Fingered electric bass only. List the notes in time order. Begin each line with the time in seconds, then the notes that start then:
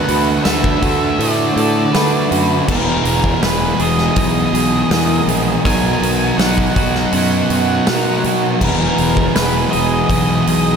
0.09 D2
0.45 D2
0.83 D2
1.18 A2
1.56 A2
1.95 D3
2.31 F#2
2.68 E1
3.05 E1
3.42 E1
3.80 E1
4.17 B1
4.53 B1
4.91 E2
5.26 A#1
5.66 B1
6.01 B1
6.38 B1
6.76 B1
7.13 F#2
7.50 F#2
7.88 B2
8.24 B2
8.62 E1
8.99 E1
9.36 E1
9.75 E1
10.10 B1
10.47 B1